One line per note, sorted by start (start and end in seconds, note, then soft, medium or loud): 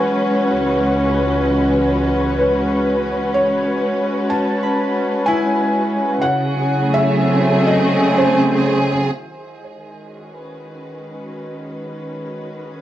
0.00 3.35 E3 medium
0.00 0.54 F#3 medium
0.00 6.22 G#3 medium
0.00 6.22 C#4 medium
0.00 7.38 F#4 medium
0.00 9.18 F#4 medium
0.00 6.21 B4 medium
0.00 9.18 F#5 medium
0.00 0.49 G#5 medium
0.48 3.34 C#2 medium
0.48 2.45 F#5 medium
2.39 3.07 B4 medium
3.34 4.33 C#5 loud
4.30 5.29 A5 medium
4.63 6.87 B5 medium
5.26 7.89 E4 medium
5.26 6.25 G#5 loud
6.21 9.15 C#3 medium
6.21 6.97 F#5 medium
6.41 11.34 G#4 medium
6.52 9.15 F#3 medium
6.82 9.15 A3 medium
6.94 7.70 E5 loud
7.17 9.16 C4 medium
7.67 8.19 D#5 medium
8.18 8.88 C5 medium
9.16 12.81 D#3 medium
9.16 12.81 D#4 medium
9.16 12.81 D#5 medium
9.47 12.81 G#3 medium
10.00 12.81 F#4 medium
10.04 12.81 C#4 medium
10.27 12.81 B4 medium